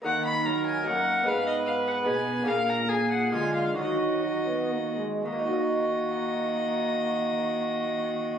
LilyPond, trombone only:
\new Staff \with { instrumentName = "Trombone" } { \time 3/4 \key ees \minor \tempo 4 = 131 bes4 ges4 bes4 | ces'2. | bes2 aes4 | ges4 ges8 ces'8 bes8 aes8 |
bes2.~ | bes2. | }